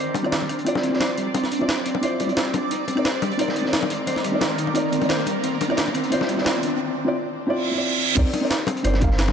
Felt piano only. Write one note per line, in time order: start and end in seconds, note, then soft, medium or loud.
0.23 0.30 C4 medium
0.23 0.31 E4 medium
0.23 0.32 F4 medium
0.23 0.32 D5 loud
0.65 0.88 C4 medium
0.65 0.90 E4 medium
0.65 0.91 F4 medium
0.65 0.91 D5 loud
0.89 1.57 C4 medium
0.89 1.58 E4 medium
0.94 1.59 F4 medium
0.94 1.60 D5 medium
1.59 1.67 C4 medium
1.59 1.67 E4 medium
1.59 1.68 F4 medium
1.59 1.68 D5 loud
2.01 2.24 C4 loud
2.01 2.26 E4 medium
2.01 2.27 F4 medium
2.01 2.28 D5 loud
2.26 2.69 C4 medium
2.26 2.70 E4 medium
2.30 2.71 F4 medium
2.30 2.72 D5 medium
2.95 3.03 C4 medium
2.95 3.04 D#4 medium
2.95 3.04 A#4 medium
2.95 3.05 D5 loud
3.37 3.61 C4 loud
3.37 3.63 D#4 medium
3.37 3.63 A#4 medium
3.37 3.64 D5 loud
3.62 4.30 C4 medium
3.62 4.31 D#4 medium
3.66 4.32 A#4 medium
3.66 4.33 D5 medium
4.32 4.39 C4 loud
4.32 4.40 D#4 medium
4.32 4.41 A#4 medium
4.32 4.41 D5 loud
4.74 4.97 C4 loud
4.74 4.99 D#4 medium
4.74 5.00 A#4 medium
4.74 5.00 D5 loud
4.98 5.41 C4 medium
4.98 5.42 D#4 medium
5.03 5.43 A#4 medium
5.03 5.44 D5 medium
5.68 5.76 C4 medium
5.68 5.76 E4 medium
5.68 5.77 F4 medium
5.68 5.78 D5 loud
6.10 6.33 C4 loud
6.10 6.35 E4 medium
6.10 6.36 F4 loud
6.10 6.37 D5 loud
6.35 7.02 C4 medium
6.35 7.04 E4 medium
6.39 7.05 F4 medium
6.39 7.06 D5 medium
7.05 7.12 C4 medium
7.05 7.13 E4 medium
7.05 7.13 F4 medium
7.05 7.14 D5 loud
7.47 7.70 C4 loud
7.47 7.72 E4 loud
7.47 7.73 F4 loud
7.47 7.73 D5 loud
7.71 8.14 C4 medium
7.71 8.15 E4 medium
7.75 8.16 F4 medium
7.75 8.17 D5 medium
8.15 8.38 C4 medium
8.15 8.39 D#4 medium
8.15 8.39 A#4 medium
8.15 8.40 D5 loud
8.41 8.49 C4 medium
8.41 8.49 D#4 medium
8.41 8.50 A#4 medium
8.41 8.50 D5 loud
8.83 8.99 C4 medium
8.83 9.00 D#4 medium
8.83 9.01 A#4 medium
8.83 9.01 D5 loud
9.00 9.09 C4 loud
9.00 9.09 D#4 medium
9.00 9.10 A#4 medium
9.00 9.10 F5 loud